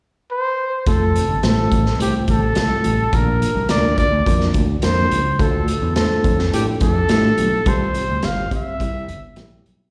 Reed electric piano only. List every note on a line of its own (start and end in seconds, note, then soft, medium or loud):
0.87 1.24 A3 medium
0.87 1.24 C4 medium
0.87 1.24 F4 medium
0.87 1.24 A4 medium
1.44 1.81 A3 medium
1.44 1.81 C4 medium
1.44 1.81 F4 medium
1.44 1.81 C5 medium
2.00 2.37 A3 medium
2.00 2.37 C4 medium
2.00 2.37 F4 medium
2.00 2.38 C5 medium
2.56 2.93 A3 medium
2.56 2.94 C4 medium
2.56 2.94 F4 medium
2.56 2.94 A4 medium
3.13 3.50 A#3 medium
3.13 3.50 D4 medium
3.13 3.51 F4 medium
3.13 3.51 A#4 medium
3.70 4.07 A#3 medium
3.70 4.07 D4 medium
3.70 4.07 F4 medium
3.70 4.07 A#4 medium
4.27 4.64 A#3 medium
4.27 4.64 D4 medium
4.27 4.64 F4 medium
4.27 4.64 A#4 medium
4.83 5.20 A#3 medium
4.83 5.20 D4 medium
4.83 5.20 F4 medium
4.83 5.20 A#4 medium
5.39 5.77 A3 medium
5.39 5.77 D4 medium
5.39 5.77 F4 medium
5.39 5.77 A4 medium
5.96 6.33 A3 medium
5.96 6.33 D4 medium
5.96 6.34 F4 medium
5.96 6.34 C5 medium
6.53 6.90 A3 medium
6.53 6.90 D4 medium
6.53 6.90 F4 medium
6.53 6.91 A4 medium
7.10 7.47 A3 medium
7.10 7.47 D4 medium
7.10 7.47 F4 medium
7.10 7.48 G4 medium
7.66 8.04 G3 medium
7.66 8.04 C4 medium
7.66 8.04 F4 medium
7.66 8.04 G4 medium
8.23 8.61 G3 medium
8.23 8.61 C4 medium
8.23 8.61 F4 medium
8.23 8.61 G4 medium
8.80 9.18 G3 medium
8.80 9.18 C4 medium
8.80 9.18 E4 medium
8.80 9.18 G4 medium
9.36 9.74 G3 medium
9.36 9.75 C4 medium
9.36 9.75 E4 medium
9.36 9.75 G4 medium